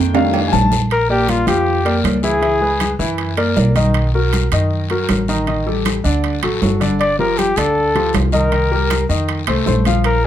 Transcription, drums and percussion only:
0.15 high conga, high timbale, low agogo, long guiro
0.34 high conga, low timbale, low agogo
0.53 high conga, low timbale, short guiro
0.72 high conga, low timbale, short guiro
0.90 high timbale, long guiro
1.10 high conga
1.28 high conga, high timbale, low timbale, short guiro
1.47 high conga, high timbale, short guiro
1.66 high conga, long guiro
1.86 high conga, high timbale
2.04 high conga, high timbale, low timbale, short guiro
2.23 short guiro
2.43 high conga, high timbale, long guiro
2.62 high conga
2.80 high conga, high timbale, low timbale, short guiro
3.00 short guiro
3.18 high conga, high timbale, long guiro
3.37 high conga, high timbale
3.56 high conga, low timbale, short guiro
3.76 high conga, high timbale, short guiro
3.94 high conga, high timbale, long guiro
4.15 high conga
4.33 high conga, high timbale, low timbale, short guiro
4.52 high conga, high timbale, short guiro
4.71 high conga, long guiro
4.90 high conga, high timbale
5.09 high conga, high timbale, low timbale, short guiro
5.28 short guiro
5.47 high conga, high timbale, long guiro
5.67 high conga
5.85 high conga, high timbale, low timbale, short guiro
6.04 short guiro
6.24 high conga, high timbale, long guiro
6.43 high conga, high timbale
6.62 high conga, low timbale, short guiro
6.81 high conga, high timbale, short guiro
7.00 high timbale, long guiro
7.21 high conga
7.37 high conga, high timbale, low timbale, short guiro
7.56 high conga, high timbale, short guiro
7.75 high conga, long guiro
7.96 high conga, high timbale
8.13 high conga, high timbale, low timbale, short guiro
8.32 high conga, short guiro
8.52 high conga, high timbale, long guiro
8.72 high conga
8.90 high conga, high timbale, low timbale, short guiro
9.10 short guiro
9.28 high conga, high timbale, long guiro
9.47 high conga, high timbale
9.66 high conga, low timbale, short guiro
9.85 high conga, high timbale, short guiro
10.04 high conga, high timbale, long guiro

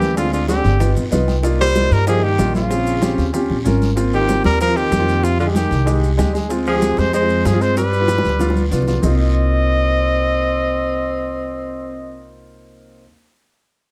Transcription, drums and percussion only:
0.01 high conga, short guiro, maracas
0.17 high bongo, high conga, long guiro, maracas
0.33 high bongo, high conga, maracas
0.49 high bongo, high conga, short guiro, maracas
0.64 high bongo, high conga, short guiro, maracas
0.80 high bongo, high conga, low conga, long guiro, maracas
0.96 high bongo, high conga, low conga, maracas
1.12 high bongo, low bongo, high conga, short guiro, maracas
1.28 high conga, short guiro, maracas
1.43 high bongo, high conga, long guiro, maracas
1.60 high bongo
1.75 high bongo, high conga, short guiro, maracas
1.91 high bongo, short guiro, maracas
2.07 high bongo, high conga, long guiro, maracas
2.23 high bongo, high conga
2.39 high bongo, low bongo, high conga, short guiro, maracas
2.54 high conga, short guiro, maracas
2.70 high bongo, high conga, long guiro, maracas
2.86 high bongo, high conga, maracas
3.02 high bongo, high conga, short guiro, maracas
3.18 high bongo, short guiro, maracas
3.34 high bongo, high conga, low conga, long guiro, maracas
3.50 high bongo, high conga, low conga
3.66 high bongo, low bongo, high conga, short guiro, maracas
3.82 high conga, short guiro, maracas
3.97 high bongo, high conga, long guiro, maracas
4.13 high conga, maracas
4.29 high bongo, high conga, short guiro, maracas
4.44 high conga, short guiro, maracas
4.60 high bongo, high conga, maracas
4.76 high conga, maracas
4.92 high bongo, low bongo, high conga, short guiro, maracas
5.08 high conga, short guiro, maracas
5.23 high bongo, high conga, long guiro, maracas
5.40 high bongo, high conga, maracas
5.55 high bongo, high conga, short guiro, maracas
5.71 high bongo, short guiro, maracas
5.87 high bongo, high conga, long guiro, maracas
6.03 high bongo, high conga, maracas
6.18 high bongo, low bongo, high conga, short guiro, maracas
6.35 short guiro, maracas
6.50 high bongo, high conga, long guiro, maracas
6.66 high conga, maracas
6.82 high bongo, high conga, short guiro, maracas
6.97 high conga, short guiro, maracas
7.13 high bongo, high conga, long guiro, maracas
7.29 high conga, maracas
7.45 high bongo, low bongo, high conga, short guiro, maracas
7.61 short guiro, maracas
7.77 high bongo, high conga, long guiro, maracas
7.92 high bongo, high conga, maracas
8.08 high bongo, high conga, short guiro, maracas
8.18 high bongo
8.24 high conga, short guiro, maracas
8.29 high bongo
8.39 high bongo, high conga, long guiro, maracas
8.50 high bongo
8.55 high conga, maracas
8.72 low conga, short guiro, maracas
8.82 low bongo
8.87 low conga, short guiro, maracas
8.93 low bongo
9.03 low bongo, low conga, long guiro, maracas

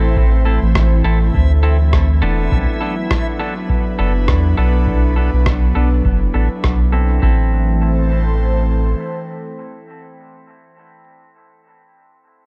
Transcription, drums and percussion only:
0.17 kick
0.75 kick, cross-stick
1.34 kick
1.93 kick, cross-stick
2.52 kick
3.11 kick, cross-stick
3.70 kick
4.28 kick, cross-stick
4.87 kick
5.46 kick, cross-stick
6.05 kick
6.64 kick, cross-stick
7.22 kick

